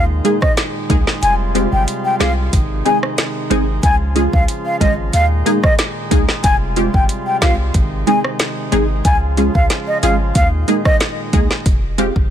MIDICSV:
0, 0, Header, 1, 6, 480
1, 0, Start_track
1, 0, Key_signature, -4, "minor"
1, 0, Tempo, 652174
1, 900, Time_signature, 4, 2, 24, 8
1, 9054, End_track
2, 0, Start_track
2, 0, Title_t, "Flute"
2, 0, Program_c, 0, 73
2, 305, Note_on_c, 0, 75, 82
2, 384, Note_off_c, 0, 75, 0
2, 901, Note_on_c, 0, 80, 96
2, 988, Note_off_c, 0, 80, 0
2, 1271, Note_on_c, 0, 79, 75
2, 1348, Note_off_c, 0, 79, 0
2, 1509, Note_on_c, 0, 79, 77
2, 1586, Note_off_c, 0, 79, 0
2, 1620, Note_on_c, 0, 77, 83
2, 1708, Note_off_c, 0, 77, 0
2, 2103, Note_on_c, 0, 80, 82
2, 2190, Note_off_c, 0, 80, 0
2, 2821, Note_on_c, 0, 80, 93
2, 2908, Note_off_c, 0, 80, 0
2, 3188, Note_on_c, 0, 77, 79
2, 3266, Note_off_c, 0, 77, 0
2, 3429, Note_on_c, 0, 77, 76
2, 3506, Note_off_c, 0, 77, 0
2, 3539, Note_on_c, 0, 75, 80
2, 3627, Note_off_c, 0, 75, 0
2, 3779, Note_on_c, 0, 77, 88
2, 3867, Note_off_c, 0, 77, 0
2, 4148, Note_on_c, 0, 75, 86
2, 4225, Note_off_c, 0, 75, 0
2, 4739, Note_on_c, 0, 80, 102
2, 4827, Note_off_c, 0, 80, 0
2, 5109, Note_on_c, 0, 79, 76
2, 5186, Note_off_c, 0, 79, 0
2, 5348, Note_on_c, 0, 79, 80
2, 5425, Note_off_c, 0, 79, 0
2, 5460, Note_on_c, 0, 77, 84
2, 5547, Note_off_c, 0, 77, 0
2, 5941, Note_on_c, 0, 80, 81
2, 6028, Note_off_c, 0, 80, 0
2, 6661, Note_on_c, 0, 80, 87
2, 6748, Note_off_c, 0, 80, 0
2, 7028, Note_on_c, 0, 77, 78
2, 7105, Note_off_c, 0, 77, 0
2, 7268, Note_on_c, 0, 75, 75
2, 7346, Note_off_c, 0, 75, 0
2, 7380, Note_on_c, 0, 77, 74
2, 7468, Note_off_c, 0, 77, 0
2, 7621, Note_on_c, 0, 77, 85
2, 7708, Note_off_c, 0, 77, 0
2, 7989, Note_on_c, 0, 75, 90
2, 8066, Note_off_c, 0, 75, 0
2, 9054, End_track
3, 0, Start_track
3, 0, Title_t, "Synth stab"
3, 0, Program_c, 1, 62
3, 178, Note_on_c, 1, 56, 78
3, 181, Note_on_c, 1, 58, 70
3, 183, Note_on_c, 1, 63, 68
3, 185, Note_on_c, 1, 68, 84
3, 281, Note_off_c, 1, 56, 0
3, 282, Note_off_c, 1, 58, 0
3, 284, Note_off_c, 1, 63, 0
3, 284, Note_off_c, 1, 68, 0
3, 658, Note_on_c, 1, 56, 96
3, 661, Note_on_c, 1, 58, 85
3, 663, Note_on_c, 1, 63, 89
3, 665, Note_on_c, 1, 68, 107
3, 761, Note_off_c, 1, 56, 0
3, 762, Note_off_c, 1, 58, 0
3, 763, Note_off_c, 1, 63, 0
3, 765, Note_off_c, 1, 68, 0
3, 1137, Note_on_c, 1, 56, 72
3, 1140, Note_on_c, 1, 60, 70
3, 1142, Note_on_c, 1, 65, 68
3, 1144, Note_on_c, 1, 67, 85
3, 1240, Note_off_c, 1, 56, 0
3, 1242, Note_off_c, 1, 60, 0
3, 1243, Note_off_c, 1, 65, 0
3, 1244, Note_off_c, 1, 67, 0
3, 1617, Note_on_c, 1, 56, 80
3, 1619, Note_on_c, 1, 60, 70
3, 1621, Note_on_c, 1, 65, 67
3, 1624, Note_on_c, 1, 68, 89
3, 1721, Note_off_c, 1, 56, 0
3, 1722, Note_off_c, 1, 60, 0
3, 1723, Note_off_c, 1, 65, 0
3, 1724, Note_off_c, 1, 68, 0
3, 2099, Note_on_c, 1, 56, 77
3, 2100, Note_on_c, 1, 60, 72
3, 2103, Note_on_c, 1, 63, 69
3, 2105, Note_on_c, 1, 68, 82
3, 2201, Note_off_c, 1, 56, 0
3, 2202, Note_off_c, 1, 60, 0
3, 2203, Note_off_c, 1, 63, 0
3, 2204, Note_off_c, 1, 68, 0
3, 2577, Note_on_c, 1, 56, 97
3, 2580, Note_on_c, 1, 60, 87
3, 2582, Note_on_c, 1, 63, 91
3, 2584, Note_on_c, 1, 68, 104
3, 2681, Note_off_c, 1, 56, 0
3, 2682, Note_off_c, 1, 60, 0
3, 2683, Note_off_c, 1, 63, 0
3, 2684, Note_off_c, 1, 68, 0
3, 3056, Note_on_c, 1, 56, 79
3, 3059, Note_on_c, 1, 61, 72
3, 3062, Note_on_c, 1, 65, 72
3, 3063, Note_on_c, 1, 68, 83
3, 3160, Note_off_c, 1, 56, 0
3, 3161, Note_off_c, 1, 61, 0
3, 3163, Note_off_c, 1, 65, 0
3, 3164, Note_off_c, 1, 68, 0
3, 3536, Note_on_c, 1, 56, 75
3, 3538, Note_on_c, 1, 61, 70
3, 3540, Note_on_c, 1, 65, 69
3, 3543, Note_on_c, 1, 68, 85
3, 3640, Note_off_c, 1, 56, 0
3, 3641, Note_off_c, 1, 61, 0
3, 3642, Note_off_c, 1, 65, 0
3, 3643, Note_off_c, 1, 68, 0
3, 4015, Note_on_c, 1, 56, 74
3, 4017, Note_on_c, 1, 58, 69
3, 4020, Note_on_c, 1, 63, 70
3, 4022, Note_on_c, 1, 68, 88
3, 4119, Note_off_c, 1, 56, 0
3, 4120, Note_off_c, 1, 58, 0
3, 4122, Note_off_c, 1, 63, 0
3, 4123, Note_off_c, 1, 68, 0
3, 4495, Note_on_c, 1, 56, 95
3, 4498, Note_on_c, 1, 58, 88
3, 4501, Note_on_c, 1, 63, 89
3, 4502, Note_on_c, 1, 68, 104
3, 4600, Note_off_c, 1, 56, 0
3, 4601, Note_off_c, 1, 58, 0
3, 4602, Note_off_c, 1, 63, 0
3, 4603, Note_off_c, 1, 68, 0
3, 4977, Note_on_c, 1, 56, 75
3, 4979, Note_on_c, 1, 60, 68
3, 4981, Note_on_c, 1, 65, 72
3, 4984, Note_on_c, 1, 67, 85
3, 5080, Note_off_c, 1, 56, 0
3, 5082, Note_off_c, 1, 60, 0
3, 5083, Note_off_c, 1, 65, 0
3, 5084, Note_off_c, 1, 67, 0
3, 5458, Note_on_c, 1, 56, 78
3, 5461, Note_on_c, 1, 60, 72
3, 5463, Note_on_c, 1, 65, 74
3, 5465, Note_on_c, 1, 67, 86
3, 5561, Note_off_c, 1, 56, 0
3, 5563, Note_off_c, 1, 60, 0
3, 5563, Note_off_c, 1, 65, 0
3, 5565, Note_off_c, 1, 67, 0
3, 5938, Note_on_c, 1, 56, 75
3, 5940, Note_on_c, 1, 60, 69
3, 5943, Note_on_c, 1, 63, 72
3, 5945, Note_on_c, 1, 68, 82
3, 6041, Note_off_c, 1, 56, 0
3, 6042, Note_off_c, 1, 60, 0
3, 6043, Note_off_c, 1, 63, 0
3, 6044, Note_off_c, 1, 68, 0
3, 6417, Note_on_c, 1, 56, 95
3, 6418, Note_on_c, 1, 60, 84
3, 6421, Note_on_c, 1, 63, 84
3, 6423, Note_on_c, 1, 68, 100
3, 6520, Note_off_c, 1, 56, 0
3, 6521, Note_off_c, 1, 60, 0
3, 6522, Note_off_c, 1, 63, 0
3, 6524, Note_off_c, 1, 68, 0
3, 6898, Note_on_c, 1, 56, 74
3, 6900, Note_on_c, 1, 61, 69
3, 6902, Note_on_c, 1, 65, 68
3, 6904, Note_on_c, 1, 68, 84
3, 7001, Note_off_c, 1, 56, 0
3, 7002, Note_off_c, 1, 61, 0
3, 7003, Note_off_c, 1, 65, 0
3, 7004, Note_off_c, 1, 68, 0
3, 7379, Note_on_c, 1, 56, 79
3, 7381, Note_on_c, 1, 61, 70
3, 7383, Note_on_c, 1, 65, 67
3, 7386, Note_on_c, 1, 68, 86
3, 7482, Note_off_c, 1, 56, 0
3, 7483, Note_off_c, 1, 61, 0
3, 7483, Note_off_c, 1, 65, 0
3, 7485, Note_off_c, 1, 68, 0
3, 7859, Note_on_c, 1, 56, 75
3, 7861, Note_on_c, 1, 58, 71
3, 7863, Note_on_c, 1, 63, 68
3, 7865, Note_on_c, 1, 68, 84
3, 7961, Note_off_c, 1, 56, 0
3, 7962, Note_off_c, 1, 58, 0
3, 7964, Note_off_c, 1, 63, 0
3, 7965, Note_off_c, 1, 68, 0
3, 8339, Note_on_c, 1, 56, 98
3, 8341, Note_on_c, 1, 58, 86
3, 8343, Note_on_c, 1, 63, 86
3, 8345, Note_on_c, 1, 68, 104
3, 8442, Note_off_c, 1, 56, 0
3, 8443, Note_off_c, 1, 58, 0
3, 8444, Note_off_c, 1, 63, 0
3, 8445, Note_off_c, 1, 68, 0
3, 8817, Note_on_c, 1, 56, 92
3, 8819, Note_on_c, 1, 60, 83
3, 8822, Note_on_c, 1, 65, 80
3, 8824, Note_on_c, 1, 67, 96
3, 8920, Note_off_c, 1, 56, 0
3, 8921, Note_off_c, 1, 60, 0
3, 8923, Note_off_c, 1, 65, 0
3, 8924, Note_off_c, 1, 67, 0
3, 9054, End_track
4, 0, Start_track
4, 0, Title_t, "Pipe organ"
4, 0, Program_c, 2, 19
4, 0, Note_on_c, 2, 46, 67
4, 0, Note_on_c, 2, 51, 67
4, 0, Note_on_c, 2, 56, 66
4, 0, Note_on_c, 2, 63, 78
4, 890, Note_off_c, 2, 63, 0
4, 891, Note_off_c, 2, 46, 0
4, 891, Note_off_c, 2, 51, 0
4, 902, Note_on_c, 2, 55, 63
4, 902, Note_on_c, 2, 65, 79
4, 904, Note_on_c, 2, 48, 71
4, 1852, Note_off_c, 2, 55, 0
4, 1852, Note_off_c, 2, 65, 0
4, 1860, Note_on_c, 2, 51, 63
4, 1860, Note_on_c, 2, 63, 80
4, 2803, Note_off_c, 2, 48, 0
4, 2810, Note_off_c, 2, 51, 0
4, 2811, Note_off_c, 2, 63, 0
4, 2820, Note_on_c, 2, 49, 70
4, 2820, Note_on_c, 2, 53, 63
4, 2820, Note_on_c, 2, 65, 78
4, 3750, Note_off_c, 2, 56, 0
4, 3771, Note_off_c, 2, 49, 0
4, 3771, Note_off_c, 2, 53, 0
4, 3771, Note_off_c, 2, 65, 0
4, 3779, Note_on_c, 2, 51, 62
4, 3779, Note_on_c, 2, 56, 67
4, 3780, Note_on_c, 2, 46, 71
4, 3780, Note_on_c, 2, 63, 79
4, 4730, Note_off_c, 2, 46, 0
4, 4730, Note_off_c, 2, 51, 0
4, 4731, Note_off_c, 2, 63, 0
4, 4737, Note_on_c, 2, 65, 78
4, 4738, Note_on_c, 2, 48, 72
4, 4738, Note_on_c, 2, 55, 64
4, 5689, Note_off_c, 2, 55, 0
4, 5689, Note_off_c, 2, 65, 0
4, 5698, Note_on_c, 2, 63, 78
4, 5699, Note_on_c, 2, 51, 64
4, 6640, Note_off_c, 2, 48, 0
4, 6649, Note_off_c, 2, 63, 0
4, 6650, Note_off_c, 2, 51, 0
4, 6660, Note_on_c, 2, 49, 70
4, 6660, Note_on_c, 2, 53, 62
4, 6661, Note_on_c, 2, 65, 74
4, 7611, Note_off_c, 2, 49, 0
4, 7611, Note_off_c, 2, 53, 0
4, 7611, Note_off_c, 2, 65, 0
4, 7618, Note_on_c, 2, 46, 70
4, 7618, Note_on_c, 2, 51, 65
4, 7619, Note_on_c, 2, 63, 75
4, 8550, Note_off_c, 2, 56, 0
4, 8569, Note_off_c, 2, 46, 0
4, 8570, Note_off_c, 2, 51, 0
4, 8570, Note_off_c, 2, 63, 0
4, 9054, End_track
5, 0, Start_track
5, 0, Title_t, "808-style bass"
5, 0, Program_c, 3, 38
5, 0, Note_on_c, 3, 39, 105
5, 156, Note_off_c, 3, 39, 0
5, 662, Note_on_c, 3, 37, 88
5, 775, Note_off_c, 3, 37, 0
5, 902, Note_on_c, 3, 29, 112
5, 1230, Note_off_c, 3, 29, 0
5, 1269, Note_on_c, 3, 31, 97
5, 1370, Note_off_c, 3, 31, 0
5, 1621, Note_on_c, 3, 36, 100
5, 1836, Note_off_c, 3, 36, 0
5, 1863, Note_on_c, 3, 32, 108
5, 2077, Note_off_c, 3, 32, 0
5, 2580, Note_on_c, 3, 32, 97
5, 2795, Note_off_c, 3, 32, 0
5, 2821, Note_on_c, 3, 37, 114
5, 3150, Note_off_c, 3, 37, 0
5, 3190, Note_on_c, 3, 37, 86
5, 3290, Note_off_c, 3, 37, 0
5, 3540, Note_on_c, 3, 32, 98
5, 3755, Note_off_c, 3, 32, 0
5, 3780, Note_on_c, 3, 39, 104
5, 3995, Note_off_c, 3, 39, 0
5, 4501, Note_on_c, 3, 37, 89
5, 4615, Note_off_c, 3, 37, 0
5, 4740, Note_on_c, 3, 29, 111
5, 5069, Note_off_c, 3, 29, 0
5, 5108, Note_on_c, 3, 31, 100
5, 5209, Note_off_c, 3, 31, 0
5, 5460, Note_on_c, 3, 36, 96
5, 5675, Note_off_c, 3, 36, 0
5, 5701, Note_on_c, 3, 32, 105
5, 5916, Note_off_c, 3, 32, 0
5, 6421, Note_on_c, 3, 32, 94
5, 6636, Note_off_c, 3, 32, 0
5, 6661, Note_on_c, 3, 37, 113
5, 6990, Note_off_c, 3, 37, 0
5, 7029, Note_on_c, 3, 37, 88
5, 7130, Note_off_c, 3, 37, 0
5, 7381, Note_on_c, 3, 32, 98
5, 7596, Note_off_c, 3, 32, 0
5, 7621, Note_on_c, 3, 39, 102
5, 7836, Note_off_c, 3, 39, 0
5, 8341, Note_on_c, 3, 37, 85
5, 8455, Note_off_c, 3, 37, 0
5, 8581, Note_on_c, 3, 29, 109
5, 8910, Note_off_c, 3, 29, 0
5, 8949, Note_on_c, 3, 31, 96
5, 9050, Note_off_c, 3, 31, 0
5, 9054, End_track
6, 0, Start_track
6, 0, Title_t, "Drums"
6, 182, Note_on_c, 9, 42, 49
6, 256, Note_off_c, 9, 42, 0
6, 310, Note_on_c, 9, 36, 94
6, 310, Note_on_c, 9, 37, 90
6, 384, Note_off_c, 9, 36, 0
6, 384, Note_off_c, 9, 37, 0
6, 421, Note_on_c, 9, 42, 69
6, 422, Note_on_c, 9, 38, 118
6, 495, Note_off_c, 9, 42, 0
6, 496, Note_off_c, 9, 38, 0
6, 661, Note_on_c, 9, 42, 59
6, 662, Note_on_c, 9, 36, 101
6, 735, Note_off_c, 9, 42, 0
6, 736, Note_off_c, 9, 36, 0
6, 790, Note_on_c, 9, 38, 74
6, 863, Note_off_c, 9, 38, 0
6, 902, Note_on_c, 9, 42, 74
6, 976, Note_off_c, 9, 42, 0
6, 1142, Note_on_c, 9, 42, 52
6, 1215, Note_off_c, 9, 42, 0
6, 1382, Note_on_c, 9, 42, 79
6, 1456, Note_off_c, 9, 42, 0
6, 1623, Note_on_c, 9, 38, 120
6, 1624, Note_on_c, 9, 42, 62
6, 1697, Note_off_c, 9, 38, 0
6, 1698, Note_off_c, 9, 42, 0
6, 1862, Note_on_c, 9, 36, 89
6, 1862, Note_on_c, 9, 42, 78
6, 1936, Note_off_c, 9, 36, 0
6, 1936, Note_off_c, 9, 42, 0
6, 2102, Note_on_c, 9, 42, 47
6, 2176, Note_off_c, 9, 42, 0
6, 2230, Note_on_c, 9, 37, 88
6, 2303, Note_off_c, 9, 37, 0
6, 2341, Note_on_c, 9, 42, 67
6, 2342, Note_on_c, 9, 38, 117
6, 2414, Note_off_c, 9, 42, 0
6, 2416, Note_off_c, 9, 38, 0
6, 2581, Note_on_c, 9, 42, 62
6, 2655, Note_off_c, 9, 42, 0
6, 2820, Note_on_c, 9, 42, 77
6, 2821, Note_on_c, 9, 36, 111
6, 2894, Note_off_c, 9, 36, 0
6, 2894, Note_off_c, 9, 42, 0
6, 3059, Note_on_c, 9, 42, 52
6, 3133, Note_off_c, 9, 42, 0
6, 3189, Note_on_c, 9, 36, 86
6, 3263, Note_off_c, 9, 36, 0
6, 3300, Note_on_c, 9, 42, 75
6, 3374, Note_off_c, 9, 42, 0
6, 3540, Note_on_c, 9, 36, 86
6, 3541, Note_on_c, 9, 42, 61
6, 3614, Note_off_c, 9, 36, 0
6, 3615, Note_off_c, 9, 42, 0
6, 3779, Note_on_c, 9, 42, 76
6, 3852, Note_off_c, 9, 42, 0
6, 4020, Note_on_c, 9, 42, 49
6, 4094, Note_off_c, 9, 42, 0
6, 4147, Note_on_c, 9, 37, 88
6, 4149, Note_on_c, 9, 36, 94
6, 4221, Note_off_c, 9, 37, 0
6, 4222, Note_off_c, 9, 36, 0
6, 4258, Note_on_c, 9, 42, 68
6, 4260, Note_on_c, 9, 38, 118
6, 4332, Note_off_c, 9, 42, 0
6, 4333, Note_off_c, 9, 38, 0
6, 4499, Note_on_c, 9, 42, 59
6, 4501, Note_on_c, 9, 36, 104
6, 4573, Note_off_c, 9, 42, 0
6, 4574, Note_off_c, 9, 36, 0
6, 4626, Note_on_c, 9, 38, 73
6, 4700, Note_off_c, 9, 38, 0
6, 4738, Note_on_c, 9, 42, 72
6, 4739, Note_on_c, 9, 36, 116
6, 4812, Note_off_c, 9, 42, 0
6, 4813, Note_off_c, 9, 36, 0
6, 4978, Note_on_c, 9, 42, 53
6, 5052, Note_off_c, 9, 42, 0
6, 5109, Note_on_c, 9, 36, 86
6, 5182, Note_off_c, 9, 36, 0
6, 5219, Note_on_c, 9, 42, 75
6, 5293, Note_off_c, 9, 42, 0
6, 5460, Note_on_c, 9, 36, 89
6, 5460, Note_on_c, 9, 38, 122
6, 5461, Note_on_c, 9, 42, 60
6, 5533, Note_off_c, 9, 36, 0
6, 5534, Note_off_c, 9, 38, 0
6, 5535, Note_off_c, 9, 42, 0
6, 5699, Note_on_c, 9, 42, 73
6, 5701, Note_on_c, 9, 36, 93
6, 5773, Note_off_c, 9, 42, 0
6, 5774, Note_off_c, 9, 36, 0
6, 5941, Note_on_c, 9, 42, 47
6, 6014, Note_off_c, 9, 42, 0
6, 6068, Note_on_c, 9, 37, 89
6, 6141, Note_off_c, 9, 37, 0
6, 6178, Note_on_c, 9, 42, 68
6, 6180, Note_on_c, 9, 38, 118
6, 6252, Note_off_c, 9, 42, 0
6, 6253, Note_off_c, 9, 38, 0
6, 6419, Note_on_c, 9, 42, 61
6, 6493, Note_off_c, 9, 42, 0
6, 6659, Note_on_c, 9, 42, 73
6, 6660, Note_on_c, 9, 36, 117
6, 6733, Note_off_c, 9, 42, 0
6, 6734, Note_off_c, 9, 36, 0
6, 6899, Note_on_c, 9, 42, 52
6, 6973, Note_off_c, 9, 42, 0
6, 7029, Note_on_c, 9, 36, 85
6, 7103, Note_off_c, 9, 36, 0
6, 7139, Note_on_c, 9, 42, 74
6, 7140, Note_on_c, 9, 38, 70
6, 7213, Note_off_c, 9, 42, 0
6, 7214, Note_off_c, 9, 38, 0
6, 7382, Note_on_c, 9, 42, 59
6, 7455, Note_off_c, 9, 42, 0
6, 7619, Note_on_c, 9, 42, 72
6, 7621, Note_on_c, 9, 36, 93
6, 7692, Note_off_c, 9, 42, 0
6, 7694, Note_off_c, 9, 36, 0
6, 7860, Note_on_c, 9, 42, 49
6, 7934, Note_off_c, 9, 42, 0
6, 7988, Note_on_c, 9, 37, 86
6, 7989, Note_on_c, 9, 36, 92
6, 8062, Note_off_c, 9, 37, 0
6, 8063, Note_off_c, 9, 36, 0
6, 8099, Note_on_c, 9, 42, 70
6, 8101, Note_on_c, 9, 38, 113
6, 8173, Note_off_c, 9, 42, 0
6, 8174, Note_off_c, 9, 38, 0
6, 8340, Note_on_c, 9, 42, 59
6, 8341, Note_on_c, 9, 36, 100
6, 8413, Note_off_c, 9, 42, 0
6, 8415, Note_off_c, 9, 36, 0
6, 8468, Note_on_c, 9, 38, 71
6, 8542, Note_off_c, 9, 38, 0
6, 8580, Note_on_c, 9, 42, 71
6, 8581, Note_on_c, 9, 36, 117
6, 8654, Note_off_c, 9, 36, 0
6, 8654, Note_off_c, 9, 42, 0
6, 8819, Note_on_c, 9, 42, 53
6, 8893, Note_off_c, 9, 42, 0
6, 8949, Note_on_c, 9, 36, 85
6, 9023, Note_off_c, 9, 36, 0
6, 9054, End_track
0, 0, End_of_file